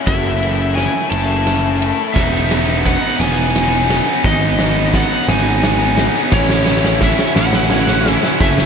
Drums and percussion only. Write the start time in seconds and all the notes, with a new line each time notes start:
0.07 kick, snare, ride
0.43 ride
0.77 snare, ride
1.12 ride
1.47 snare, ride
1.82 ride
2.16 kick, snare, crash
2.51 snare, ride
2.86 kick, snare, ride
3.21 snare, ride
3.56 snare, ride
3.90 snare, ride
4.24 kick, snare
4.59 snare
4.94 kick, snare
5.29 snare
5.63 snare
5.97 snare
6.32 kick, snare, crash
6.49 snare
6.66 snare
6.84 snare
7.01 kick, snare
7.19 snare
7.36 snare
7.53 snare
7.70 snare
7.87 snare
8.06 snare
8.23 snare
8.41 kick, snare
8.58 snare